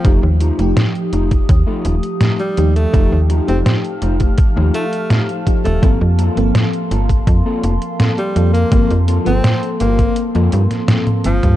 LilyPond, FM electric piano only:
\new Staff \with { instrumentName = "FM electric piano" } { \time 4/4 \key g \minor \tempo 4 = 83 <f a ees' g'>8. <f a ees' g'>2~ <f a ees' g'>8. <f a ees' g'>8 | <f a ees' g'>8. <f a ees' g'>2~ <f a ees' g'>8. <f a ees' g'>8 | <f bes c' a'>8. <f bes c' a'>2~ <f bes c' a'>8. <f bes c' a'>8 | <f bes c' a'>8. <f bes c' a'>2~ <f bes c' a'>8. <f bes c' a''>8 | }